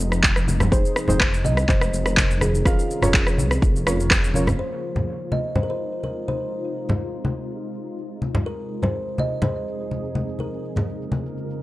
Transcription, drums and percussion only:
0.00 shaker medium
0.12 cross-stick medium
0.12 shaker medium
0.24 kick loud
0.24 clap loud
0.24 shaker medium
0.36 cross-stick medium
0.36 shaker medium
0.48 high conga medium
0.48 shaker medium
0.60 cross-stick medium
0.60 low conga loud
0.60 shaker soft
0.72 kick loud
0.72 shaker medium
0.85 shaker soft
0.96 cross-stick medium
0.96 shaker medium
1.08 high conga medium
1.08 low conga medium
1.08 shaker medium
1.20 kick loud
1.20 cross-stick loud
1.20 clap loud
1.20 shaker medium
1.34 shaker medium
1.44 high conga loud
1.44 shaker medium
1.57 cross-stick medium
1.57 shaker soft
1.68 kick loud
1.68 clap medium
1.68 high conga medium
1.68 low conga medium
1.68 shaker soft
1.81 cross-stick medium
1.81 shaker medium
1.94 shaker medium
2.06 cross-stick medium
2.06 shaker medium
2.17 kick loud
2.17 clap loud
2.17 high conga medium
2.17 shaker medium
2.31 shaker soft
2.41 cross-stick medium
2.41 high conga medium
2.41 shaker medium
2.55 shaker medium
2.66 kick loud
2.66 cross-stick medium
2.66 high conga medium
2.66 shaker medium
2.79 shaker medium
2.91 shaker soft
3.02 cross-stick medium
3.02 high conga medium
3.02 low conga medium
3.02 shaker medium
3.14 kick loud
3.14 clap loud
3.14 shaker medium
3.27 cross-stick medium
3.27 shaker soft
3.38 high conga medium
3.38 shaker medium
3.51 cross-stick medium
3.51 shaker medium
3.62 kick loud
3.62 shaker medium
3.76 shaker soft
3.87 cross-stick loud
3.87 shaker medium
4.00 shaker medium
4.11 kick loud
4.11 cross-stick medium
4.11 clap loud
4.11 shaker medium
4.24 shaker medium
4.34 high conga loud
4.34 shaker medium
4.47 cross-stick medium
4.47 low conga loud
4.47 shaker medium
4.84 shaker soft
4.96 high conga medium
4.96 low conga medium
5.32 high conga loud
5.55 high conga medium
5.55 low conga medium
6.03 high conga medium
6.28 high conga medium
6.89 high conga medium
6.89 low conga medium
7.25 high conga loud
7.74 shaker loud
7.87 shaker soft
7.98 shaker medium
8.22 high conga medium
8.22 shaker medium
8.35 low conga loud
8.59 shaker medium
8.71 shaker medium
8.82 high conga medium
8.82 low conga medium
8.95 shaker medium
9.08 shaker medium
9.18 high conga loud
9.18 shaker medium
9.32 shaker medium
9.42 high conga loud
9.42 low conga medium
9.56 shaker medium
9.68 shaker loud
9.81 shaker medium
9.91 high conga medium
9.91 shaker medium
10.05 shaker medium
10.15 high conga medium
10.15 shaker medium
10.29 shaker medium
10.39 high conga medium
10.39 shaker medium
10.53 shaker medium
10.65 shaker soft
10.76 high conga medium
10.76 low conga medium
10.76 shaker medium
10.89 shaker medium
11.02 shaker soft
11.12 high conga loud
11.12 shaker medium
11.26 shaker medium
11.37 shaker soft
11.50 shaker medium

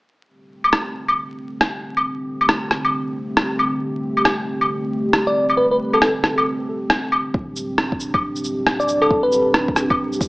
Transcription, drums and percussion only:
0.64 claves medium
0.73 cross-stick medium
1.08 claves medium
1.61 cross-stick medium
1.97 claves medium
2.41 claves medium
2.49 cross-stick medium
2.71 cross-stick medium
2.85 claves medium
3.37 cross-stick loud
3.59 claves medium
4.17 claves medium
4.25 cross-stick loud
4.61 claves medium
5.13 cross-stick loud
5.49 claves medium
5.93 claves medium
6.02 cross-stick loud
6.24 cross-stick medium
6.38 claves medium
6.90 cross-stick loud
7.12 claves medium
7.34 kick loud
7.56 shaker medium
7.78 cross-stick loud
7.92 kick loud
8.00 shaker medium
8.14 kick loud
8.14 claves medium
8.36 shaker soft
8.44 shaker medium
8.67 cross-stick loud
8.80 shaker soft
8.88 shaker medium
9.02 claves medium
9.10 kick loud
9.32 shaker medium
9.54 cross-stick loud
9.68 kick loud
9.76 cross-stick medium
9.76 shaker medium
9.90 kick loud
9.90 claves medium
10.13 shaker soft
10.21 kick loud
10.21 shaker medium

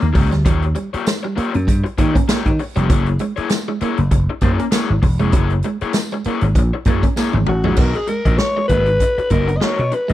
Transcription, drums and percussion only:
0.02 closed hi-hat soft
0.15 kick loud
0.15 open hi-hat medium
0.32 snare soft
0.32 closed hi-hat medium
0.45 kick loud
0.45 closed hi-hat medium
0.62 closed hi-hat soft
0.75 closed hi-hat medium
0.94 closed hi-hat medium
1.06 snare loud
1.06 closed hi-hat medium
1.06 tambourine medium
1.38 closed hi-hat medium
1.54 closed hi-hat medium
1.68 kick medium
1.68 closed hi-hat medium
1.86 closed hi-hat soft
1.98 kick medium
1.98 closed hi-hat medium
2.15 kick medium
2.15 closed hi-hat medium
2.29 snare loud
2.29 closed hi-hat loud
2.29 tambourine medium
2.45 kick medium
2.45 closed hi-hat soft
2.59 open hi-hat medium
2.76 closed hi-hat medium
2.90 kick loud
2.90 closed hi-hat loud
3.06 closed hi-hat soft
3.19 closed hi-hat medium
3.37 closed hi-hat soft
3.49 snare loud
3.49 closed hi-hat loud
3.49 tambourine medium
3.81 closed hi-hat medium
3.97 closed hi-hat medium
4.11 kick medium
4.11 closed hi-hat medium
4.41 kick medium
4.41 closed hi-hat medium
4.59 closed hi-hat medium
4.72 snare loud
4.72 closed hi-hat loud
4.72 tambourine loud
5.03 kick medium
5.03 open hi-hat medium
5.20 closed hi-hat soft
5.32 kick loud
5.32 closed hi-hat medium
5.50 closed hi-hat soft
5.63 closed hi-hat medium
5.81 closed hi-hat soft
5.93 snare loud
5.93 closed hi-hat loud
5.93 tambourine medium
6.11 closed hi-hat soft
6.24 closed hi-hat medium
6.41 closed hi-hat soft
6.55 kick medium
6.55 closed hi-hat medium
6.85 kick medium
6.85 closed hi-hat medium
7.03 kick medium
7.03 closed hi-hat soft
7.16 snare medium
7.16 tambourine medium
7.33 high tom medium
7.46 mid tom loud
7.64 floor tom medium
7.76 kick loud
7.76 crash loud
7.94 closed hi-hat soft
8.07 closed hi-hat medium
8.25 kick medium
8.25 closed hi-hat soft
8.38 snare loud
8.69 kick medium
8.69 closed hi-hat medium
8.86 closed hi-hat soft
9.00 kick medium
9.00 closed hi-hat medium
9.18 closed hi-hat soft
9.30 kick medium
9.30 closed hi-hat medium
9.48 closed hi-hat soft
9.61 snare loud
9.78 closed hi-hat soft
9.92 closed hi-hat medium
10.09 closed hi-hat soft

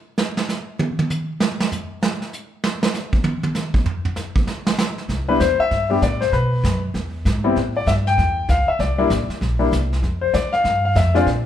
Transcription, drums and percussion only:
0.18 snare loud
0.37 snare medium
0.49 snare medium
0.49 hi-hat pedal medium
0.79 high tom loud
0.99 high tom loud
1.10 hi-hat pedal medium
1.10 high tom medium
1.40 snare loud
1.60 snare loud
1.72 floor tom medium
1.72 hi-hat pedal medium
2.03 snare loud
2.22 snare soft
2.33 hi-hat pedal medium
2.64 snare loud
2.83 snare loud
2.94 snare soft
2.94 hi-hat pedal medium
3.13 kick medium
3.24 high tom loud
3.43 high tom loud
3.55 snare medium
3.55 hi-hat pedal medium
3.74 kick medium
3.86 floor tom loud
4.05 floor tom loud
4.16 snare soft
4.16 hi-hat pedal medium
4.36 kick medium
4.47 snare medium
4.67 snare loud
4.78 snare loud
4.78 hi-hat pedal medium
4.98 snare soft
5.09 brush sweep soft
5.09 kick soft
5.09 snare soft
5.40 kick soft
5.40 snare medium
5.40 hi-hat pedal medium
5.71 brush sweep soft
5.71 kick soft
5.71 snare soft
6.02 kick soft
6.02 snare medium
6.02 hi-hat pedal medium
6.22 snare soft
6.33 brush sweep soft
6.33 kick soft
6.33 snare soft
6.64 kick soft
6.64 snare medium
6.64 hi-hat pedal medium
6.95 brush sweep soft
6.95 kick soft
6.95 snare soft
7.25 kick soft
7.25 snare medium
7.25 hi-hat pedal medium
7.56 brush sweep soft
7.56 kick soft
7.56 snare soft
7.87 kick soft
7.87 snare medium
7.87 hi-hat pedal medium
8.07 snare soft
8.18 brush sweep soft
8.18 kick soft
8.18 snare soft
8.49 kick soft
8.49 snare medium
8.49 hi-hat pedal medium
8.80 brush sweep soft
8.80 kick soft
8.80 snare soft
9.10 kick soft
9.10 snare medium
9.10 hi-hat pedal medium
9.30 snare soft
9.41 brush sweep soft
9.41 kick soft
9.41 snare soft
9.72 kick soft
9.72 snare medium
9.72 hi-hat pedal medium
9.93 snare soft
10.03 brush sweep soft
10.03 kick soft
10.03 snare soft
10.34 kick soft
10.34 snare medium
10.34 hi-hat pedal medium
10.53 snare soft
10.65 brush sweep medium
10.65 kick soft
10.65 snare soft
10.96 kick soft
10.96 snare medium
10.96 hi-hat pedal medium
11.15 snare soft
11.27 brush sweep medium
11.27 kick soft
11.27 snare soft

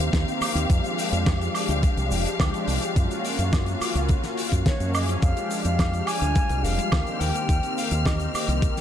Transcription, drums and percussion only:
0.00 closed hi-hat medium
0.13 kick loud
0.13 snare loud
0.13 closed hi-hat medium
0.13 shaker medium
0.28 closed hi-hat soft
0.28 shaker medium
0.41 open hi-hat loud
0.41 high woodblock medium
0.41 shaker medium
0.56 closed hi-hat medium
0.56 shaker medium
0.70 kick loud
0.70 closed hi-hat medium
0.70 shaker medium
0.84 closed hi-hat soft
0.84 shaker soft
0.98 open hi-hat loud
0.98 shaker medium
1.13 closed hi-hat medium
1.13 shaker soft
1.26 kick loud
1.26 snare loud
1.26 closed hi-hat medium
1.26 high woodblock medium
1.26 shaker medium
1.41 closed hi-hat soft
1.41 shaker medium
1.55 open hi-hat loud
1.55 high woodblock medium
1.55 shaker medium
1.70 closed hi-hat medium
1.70 shaker medium
1.83 kick loud
1.83 closed hi-hat medium
1.83 shaker medium
1.97 closed hi-hat soft
1.97 shaker medium
2.11 open hi-hat loud
2.11 shaker medium
2.26 closed hi-hat medium
2.26 shaker soft
2.40 kick loud
2.40 snare loud
2.40 closed hi-hat medium
2.40 high woodblock medium
2.40 shaker medium
2.54 closed hi-hat soft
2.54 shaker soft
2.68 open hi-hat loud
2.68 shaker medium
2.82 closed hi-hat medium
2.82 shaker medium
2.96 kick loud
2.96 closed hi-hat medium
2.96 shaker medium
3.11 closed hi-hat soft
3.11 shaker medium
3.25 open hi-hat loud
3.25 shaker medium
3.39 closed hi-hat medium
3.39 shaker medium
3.53 kick loud
3.53 snare loud
3.53 closed hi-hat medium
3.53 high woodblock medium
3.53 shaker medium
3.66 closed hi-hat soft
3.66 shaker soft
3.81 open hi-hat loud
3.81 high woodblock medium
3.81 shaker medium
3.95 closed hi-hat medium
3.95 shaker soft
4.09 kick loud
4.09 closed hi-hat medium
4.09 shaker medium
4.24 snare soft
4.24 closed hi-hat soft
4.24 shaker soft
4.37 open hi-hat loud
4.37 shaker medium
4.52 kick medium
4.52 closed hi-hat medium
4.52 shaker soft
4.66 kick loud
4.66 snare loud
4.66 closed hi-hat medium
4.66 shaker medium
4.80 closed hi-hat soft
4.80 shaker soft
4.95 open hi-hat loud
4.95 high woodblock medium
4.95 shaker medium
5.09 closed hi-hat medium
5.09 shaker medium
5.22 kick loud
5.22 closed hi-hat medium
5.22 shaker medium
5.37 closed hi-hat soft
5.37 shaker medium
5.51 open hi-hat loud
5.51 shaker loud
5.65 closed hi-hat medium
5.65 shaker soft
5.79 kick loud
5.79 snare loud
5.79 closed hi-hat medium
5.79 high woodblock medium
5.79 shaker medium
5.93 closed hi-hat soft
5.93 shaker medium
6.07 open hi-hat loud
6.07 high woodblock medium
6.07 shaker medium
6.23 closed hi-hat medium
6.23 shaker medium
6.35 kick loud
6.35 closed hi-hat medium
6.35 shaker medium
6.49 closed hi-hat soft
6.49 shaker soft
6.65 open hi-hat loud
6.65 shaker loud
6.79 closed hi-hat medium
6.79 shaker medium
6.92 kick loud
6.92 snare loud
6.92 closed hi-hat medium
6.92 high woodblock medium
6.92 shaker medium
7.07 closed hi-hat soft
7.07 shaker soft
7.21 open hi-hat loud
7.21 shaker medium
7.36 closed hi-hat medium
7.36 shaker soft
7.49 kick loud
7.49 closed hi-hat medium
7.49 shaker medium
7.63 closed hi-hat soft
7.63 shaker medium
7.78 open hi-hat loud
7.78 shaker medium
7.91 closed hi-hat medium
7.91 shaker soft
8.06 kick loud
8.06 snare loud
8.06 closed hi-hat medium
8.06 high woodblock medium
8.06 shaker medium
8.20 closed hi-hat soft
8.20 shaker soft
8.35 open hi-hat loud
8.35 high woodblock medium
8.35 shaker medium
8.49 closed hi-hat medium
8.49 shaker soft
8.62 kick loud
8.62 closed hi-hat medium
8.62 shaker medium
8.77 snare soft
8.77 closed hi-hat soft
8.77 shaker soft

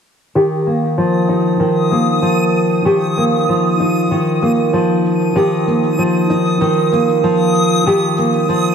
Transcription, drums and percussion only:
0.67 shaker medium
0.83 shaker soft
1.30 shaker medium
1.45 shaker soft
1.61 shaker soft
1.92 shaker medium
2.07 shaker soft
2.55 shaker medium
2.70 shaker soft
3.17 shaker medium
3.33 shaker soft
3.79 shaker medium
3.95 shaker soft
4.11 shaker soft
4.43 shaker medium
4.46 shaker medium
4.50 shaker soft
4.54 shaker soft
4.58 shaker soft
4.74 shaker soft
5.06 shaker medium
5.21 shaker soft
5.37 shaker soft
5.68 shaker medium
5.84 shaker soft
5.99 shaker soft
6.30 shaker medium
6.46 shaker soft
6.61 shaker soft
6.92 shaker medium
7.09 shaker soft
7.24 shaker soft
7.55 shaker medium
7.71 shaker soft
7.87 shaker soft
8.17 shaker medium
8.33 shaker soft
8.49 shaker soft

